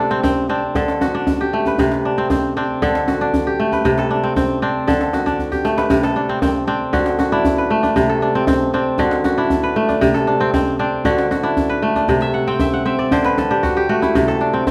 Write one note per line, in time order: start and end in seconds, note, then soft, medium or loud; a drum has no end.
0.00 0.80 C3 medium
0.00 1.46 A3 medium
0.00 0.49 D4 medium
0.00 0.75 G4 medium
0.00 0.75 A4 medium
0.00 0.17 B4 medium
0.11 0.23 C4 medium
0.23 0.49 C4 medium
0.23 djembe tone medium
0.23 djembe bass medium
0.37 djembe slap soft
0.49 1.73 C4 medium
0.49 1.14 D4 medium
0.49 djembe slap soft
0.75 1.83 D3 medium
0.75 2.07 A4 medium
0.75 djembe slap soft
0.75 djembe bass medium
0.88 djembe slap medium
1.01 1.47 F#4 medium
1.01 djembe tone medium
1.15 2.05 D4 medium
1.27 djembe bass medium
1.40 2.82 G4 medium
1.40 djembe slap soft
1.53 3.53 A3 medium
1.66 2.24 B4 medium
1.66 djembe tone medium
1.78 2.87 C3 medium
1.78 djembe bass medium
1.92 djembe slap soft
2.05 2.57 D4 medium
2.18 2.30 C4 medium
2.30 2.56 C4 medium
2.30 djembe tone medium
2.30 djembe bass medium
2.43 djembe slap soft
2.56 3.79 C4 medium
2.56 3.21 D4 medium
2.56 djembe slap soft
2.82 3.90 D3 medium
2.82 3.98 A4 medium
2.82 djembe slap soft
2.82 djembe bass medium
2.95 djembe slap medium
3.08 3.53 F#4 medium
3.08 djembe tone medium
3.21 4.10 D4 medium
3.34 djembe bass medium
3.46 4.88 G4 medium
3.46 djembe slap soft
3.60 5.59 A3 medium
3.72 4.29 B4 medium
3.72 djembe tone medium
3.85 4.92 C3 medium
3.85 djembe slap soft
3.85 djembe bass medium
3.98 4.87 A4 medium
3.98 djembe slap soft
4.11 4.62 D4 medium
4.23 4.36 C4 medium
4.36 4.62 C4 medium
4.36 djembe tone medium
4.36 djembe bass medium
4.62 5.83 C4 medium
4.62 5.26 D4 medium
4.62 djembe slap soft
4.87 5.95 D3 medium
4.87 6.03 A4 medium
4.87 djembe bass medium
5.01 djembe slap medium
5.13 5.58 F#4 medium
5.13 djembe tone medium
5.26 6.16 D4 medium
5.26 djembe bass soft
5.39 djembe bass soft
5.52 6.93 G4 medium
5.52 djembe bass soft
5.65 7.64 A3 medium
5.65 djembe slap medium
5.77 6.35 B4 medium
5.77 djembe slap medium
5.90 6.98 C3 medium
5.90 djembe bass medium
6.03 7.35 A4 medium
6.03 djembe slap medium
6.16 6.67 D4 medium
6.29 6.42 C4 medium
6.42 6.67 C4 medium
6.42 djembe tone medium
6.42 djembe bass medium
6.55 djembe slap soft
6.67 7.64 C4 medium
6.67 7.32 D4 medium
6.67 djembe slap soft
6.93 8.01 D3 medium
6.93 7.19 F#4 medium
6.93 djembe slap soft
6.93 djembe bass medium
7.06 djembe slap medium
7.19 8.66 F#4 medium
7.19 djembe tone medium
7.32 7.82 D4 medium
7.32 8.89 E4 medium
7.45 djembe bass medium
7.58 8.02 B4 medium
7.58 djembe slap soft
7.70 9.70 A3 medium
7.83 8.22 D4 medium
7.83 djembe tone medium
7.96 9.04 C3 medium
7.96 djembe bass medium
8.09 9.41 A4 medium
8.22 8.73 D4 medium
8.35 8.47 C4 medium
8.47 8.73 C4 medium
8.47 djembe tone medium
8.47 djembe bass medium
8.60 djembe slap soft
8.73 9.69 C4 medium
8.73 9.37 D4 medium
8.73 djembe slap soft
8.98 10.07 D3 medium
8.98 9.25 F#4 medium
8.98 djembe slap soft
8.98 djembe bass medium
9.11 djembe slap medium
9.24 10.71 F#4 medium
9.24 djembe tone medium
9.38 9.88 D4 medium
9.38 10.94 E4 medium
9.50 djembe bass medium
9.63 10.07 B4 medium
9.63 djembe slap soft
9.76 11.76 A3 medium
9.89 10.27 D4 medium
9.89 djembe tone medium
10.01 11.10 C3 medium
10.01 djembe bass medium
10.14 11.46 A4 medium
10.14 djembe slap soft
10.27 10.79 D4 medium
10.40 10.53 C4 medium
10.54 10.79 C4 medium
10.54 djembe tone medium
10.54 djembe bass medium
10.67 djembe slap soft
10.79 11.75 C4 medium
10.79 11.43 D4 medium
10.79 djembe slap soft
11.05 12.14 D3 medium
11.05 11.30 F#4 medium
11.05 djembe slap soft
11.05 djembe bass medium
11.18 djembe slap medium
11.31 12.54 F#4 medium
11.31 djembe tone medium
11.43 11.95 D4 medium
11.43 13.00 E4 medium
11.57 djembe bass medium
11.69 12.15 B4 medium
11.69 djembe slap soft
11.82 13.82 A3 medium
11.95 13.50 D4 medium
11.95 djembe tone medium
12.08 13.17 C3 medium
12.08 djembe slap soft
12.08 djembe bass medium
12.21 12.60 E5 medium
12.21 djembe slap soft
12.34 12.73 F#5 medium
12.47 12.85 C4 medium
12.47 12.79 G5 medium
12.60 12.86 E5 medium
12.60 djembe tone medium
12.60 djembe bass medium
12.73 13.57 F#5 medium
12.85 13.31 C4 medium
12.85 13.89 E5 medium
12.99 14.10 D5 medium
13.11 14.20 D3 medium
13.11 14.31 C5 medium
13.11 djembe bass medium
13.24 14.21 B4 medium
13.24 djembe slap medium
13.38 14.27 A4 medium
13.38 djembe slap soft
13.38 djembe tone medium
13.51 14.40 D4 medium
13.51 13.76 G4 medium
13.51 djembe slap soft
13.63 13.89 F#4 medium
13.63 djembe slap soft
13.63 djembe bass medium
13.77 14.71 G4 medium
13.89 14.71 A3 medium
13.89 14.71 F#4 medium
14.02 14.71 E4 medium
14.02 djembe slap soft
14.02 djembe tone medium
14.15 14.71 C3 medium
14.15 djembe bass medium
14.28 14.71 A4 medium
14.28 djembe slap medium
14.41 14.71 D4 medium
14.53 14.67 C4 medium
14.67 14.71 C4 medium
14.67 djembe tone medium
14.67 djembe bass medium